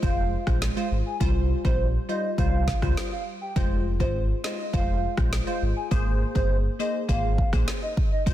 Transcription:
0.02 sub bass F1, synth pluck G#3 F4 C5, soft synth lead F5, kick
0.47 sub bass A#1, synth pluck G#3 F4 C5, kick, cross-stick
0.62 snare
0.76 synth pluck G#3 F4 C5, soft synth lead F5
0.91 sub bass G#1
1.06 soft synth lead G#5
1.20 sub bass C2, synth pluck G3 F4 C5, kick
1.65 sub bass A#1, synth pluck G3 F4 C5, soft synth lead C5, kick
2.09 synth pluck G3 F4 C5, soft synth lead D#5
2.38 sub bass C2, synth pluck G3 F4 C5, soft synth lead F5, kick
2.68 kick, snare
2.82 sub bass C#2, synth pluck G3 F4 C5, kick, cross-stick
2.97 snare
3.12 soft synth lead F5
3.41 soft synth lead G5
3.56 sub bass F1, synth pluck G#3 F4 C5, kick
4.00 sub bass G#1, synth pluck G#3 F4 C5, soft synth lead C5, kick
4.44 synth pluck G#3 F4 C5, soft synth lead D#5, snare
4.73 sub bass F1, synth pluck G#3 F4 C5, soft synth lead F5, kick
5.17 sub bass A#1, synth pluck G#3 F4 C5, kick, cross-stick
5.33 snare
5.47 synth pluck G#3 F4 C5, soft synth lead F5
5.62 sub bass G#1
5.76 soft synth lead G#5
5.91 sub bass G#1, synth pluck A#3 G#4 C5, kick
6.35 sub bass G1, synth pluck A#3 G#4 C5, soft synth lead C5, kick
6.79 synth pluck A#3 G#4 C5, soft synth lead D#5
7.09 sub bass G#1, synth pluck A#3 G#4 C5, soft synth lead F5, kick
7.38 kick
7.53 sub bass A#1, synth pluck A#3 G#4 C5, kick, cross-stick
7.68 snare
7.82 soft synth lead D#5
7.97 kick
8.11 soft synth lead D#5
8.26 sub bass F1, synth pluck G#3 F4 C5, kick

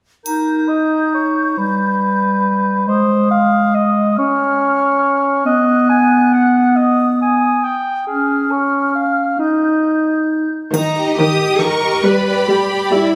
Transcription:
0.25 clarinet D#4, cor anglais A#4, flute section G6, triangle
0.68 cor anglais D#5
1.14 cor anglais C#5
1.58 clarinet G3, cor anglais B4
2.87 clarinet G#3, cor anglais C5, flute section D#6
3.31 cor anglais F5
3.75 cor anglais D#5
4.16 clarinet C#4, cor anglais C#5, flute section F6
5.45 clarinet B3, cor anglais D#5, flute section F#6
5.89 cor anglais G#5
6.33 cor anglais F#5
6.76 cor anglais D#5, flute section D#6
7.22 cor anglais G#5
7.64 cor anglais G5
8.07 clarinet C#4, cor anglais G#4, flute section F6
8.51 cor anglais C#5
8.95 cor anglais F5
9.39 clarinet D#4, cor anglais D#5, flute section G6
10.74 viola section D#3, cello section D#4, violin section A#5, triangle
10.96 violin section G4 D#5
11.18 viola section D#3, cello section G4, violin section D#6
11.41 violin section G4 D#5
11.60 viola section D#3, cello section A#4, violin section C#6
11.84 violin section G4 D#5
12.05 viola section G3, violin section G4 D5 B5, cello section B4
12.27 violin section G4 D5
12.48 viola section G3, cello section G4
12.71 violin section G4 D5
12.91 viola section G3, cello section E4

